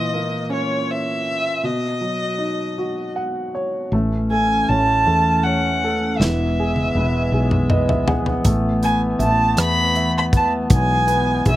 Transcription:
Already playing: upright piano A#2 E3, violin D#5
0.13 upright piano A#3
0.50 upright piano C#4, violin C#5
0.91 violin E5
1.63 upright piano B2, violin D#5
2.01 upright piano F#3
2.38 upright piano D#4
2.78 upright piano F#4
3.16 upright piano F#5
3.55 upright piano C#5
3.92 fretless electric bass A1, woodwind section E3 A3 C#4, upright piano A3
4.31 upright piano A4, violin G#5
4.68 fretless electric bass A1, upright piano C#5, violin A5
5.07 fretless electric bass E2, upright piano A4
5.43 upright piano C#5, violin F#5
5.84 upright piano A4
6.18 fretless electric bass E1, upright piano E3, woodwind section G#3 B3, violin E5, snare
6.60 upright piano G#4
6.76 high tom
6.95 fretless electric bass E1, upright piano B4
7.32 fretless electric bass B1, upright piano G#4
7.51 mid tom
7.70 upright piano B4 D#5, mid tom
7.89 upright piano E5, floor tom
8.08 upright piano G#4 F#5, floor tom
8.26 floor tom
8.45 fretless electric bass A1, woodwind section A3, upright piano A3, kick, closed hi-hat
8.83 upright piano B4, violin G#5, closed hi-hat
9.19 fretless electric bass A1, upright piano E5, violin A5, closed hi-hat
9.57 fretless electric bass E2, upright piano B4, violin B5, cross-stick, closed hi-hat
9.95 upright piano E5, closed hi-hat
10.18 violin B5
10.33 upright piano B4, violin A5, kick, closed hi-hat
10.70 fretless electric bass B1, woodwind section E3 G#3, upright piano B3, kick, closed hi-hat
10.75 violin G#5
11.07 upright piano B4, closed hi-hat
11.45 fretless electric bass B1, upright piano G#4, violin E5, kick, closed hi-hat

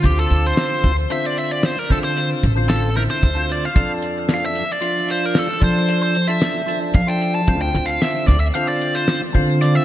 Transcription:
0.02 upright bass D2, tonewheel organ D3 C4 F4, lead electric guitar G4, kick, closed hi-hat
0.19 lead electric guitar A4
0.31 upright bass D2, closed hi-hat
0.46 lead electric guitar C5
0.57 snare, closed hi-hat
0.83 upright bass D2, kick, closed hi-hat
1.10 tonewheel organ D3 C4 F4, lead electric guitar E5, closed hi-hat
1.26 lead electric guitar D5
1.38 lead electric guitar E5, closed hi-hat
1.51 lead electric guitar D5
1.63 lead electric guitar C5, snare, closed hi-hat
1.79 lead electric guitar A#4
1.89 tonewheel organ D3 C4 F4, upright bass D3, lead electric guitar A4, kick, closed hi-hat
2.04 lead electric guitar C5
2.17 closed hi-hat
2.43 upright bass A1, kick, closed hi-hat
2.55 tonewheel organ D3 C4 F4
2.69 lead electric guitar A4, snare, closed hi-hat
2.95 tonewheel organ D3 C4 E4, lead electric guitar A#4, snare, closed hi-hat
3.10 lead electric guitar C5
3.23 upright bass D2, kick, closed hi-hat
3.35 tonewheel organ D3 C4 F4
3.49 lead electric guitar D5, closed hi-hat
3.65 lead electric guitar F5
3.74 upright bass F2, tonewheel organ F3 D4 A4, kick, closed hi-hat
4.02 closed hi-hat
4.29 snare, closed hi-hat
4.34 lead electric guitar F5
4.46 lead electric guitar E5
4.55 closed hi-hat
4.73 lead electric guitar D5
4.81 tonewheel organ F3 D4 F4, closed hi-hat
5.09 lead electric guitar C5, closed hi-hat
5.26 lead electric guitar A#4
5.35 lead electric guitar A4, snare, closed hi-hat
5.60 tonewheel organ F3 D4 A4, upright bass F3, lead electric guitar C5, kick, closed hi-hat
5.88 closed hi-hat
6.03 lead electric guitar C5
6.15 closed hi-hat
6.28 tonewheel organ F3 D4 A4, lead electric guitar E5
6.42 snare, closed hi-hat
6.67 tonewheel organ F3 D4 A4, closed hi-hat
6.94 upright bass F3, lead electric guitar F5, kick, snare, closed hi-hat
7.07 tonewheel organ F3 D4 A4, lead electric guitar G5
7.22 closed hi-hat
7.35 lead electric guitar A5
7.47 upright bass D2, tonewheel organ D3 C4 F4, kick, closed hi-hat
7.62 lead electric guitar G5
7.74 upright bass D2, closed hi-hat
7.86 lead electric guitar F5
8.01 lead electric guitar E5, snare, closed hi-hat
8.27 upright bass D2, lead electric guitar D5, kick, snare, closed hi-hat
8.40 lead electric guitar E5
8.54 tonewheel organ D3 C4 F4, lead electric guitar F5, closed hi-hat
8.68 lead electric guitar D5
8.81 closed hi-hat
8.95 lead electric guitar C5
9.08 snare, closed hi-hat
9.33 tonewheel organ D3 C4 F4, upright bass D3, kick, closed hi-hat
9.62 lead electric guitar D5, snare, closed hi-hat
9.75 lead electric guitar E5

